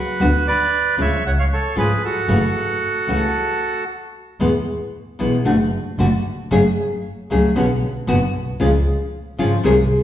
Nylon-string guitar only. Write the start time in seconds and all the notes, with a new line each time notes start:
0.20 D3 B3 D4 F#4
0.97 C#3 F3 G#3 C#4 F4
1.75 C#3 F3 G#3 C#4 F4
2.28 C#3 E3 A3 C#4 F#4
3.07 C#3 E3 A3 C#4 F#4
4.40 B2 E3 G#3 B3 E4
5.19 B2 E3 G#3 B3 E4
5.45 D3 A3 D4 F#4
5.99 D3 A3 D4 F#4
6.51 C#3 F#3 A3 C#4 G#4
7.30 C#3 F#3 A3 C#4 G#4
7.55 B2 D3 B3 C#4 F#4
8.07 B2 D3 B3 C#4 F#4
8.60 C#3 F3 G#3 C#4 F4
9.38 C#3 F3 G#3 C#4 F4
9.63 C3 D#3 G#3 C4 G#4